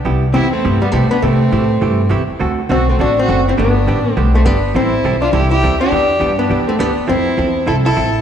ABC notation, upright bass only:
X:1
M:4/4
L:1/8
Q:"Swing" 1/4=205
K:Am
V:1 name="Upright bass" clef=bass
C,,2 E,,2 G,,2 B,, z | C,2 A,,2 G,,2 E,, z | D,,2 B,,,2 A,,,2 ^F,,,2 | G,,,2 A,,,2 B,,,2 G,,,2 |
A,,,2 B,,,2 C,,2 D,,2 | E,,2 G,,2 E,,2 D,, z | F,,2 E,,2 C,,2 A,,,2 |]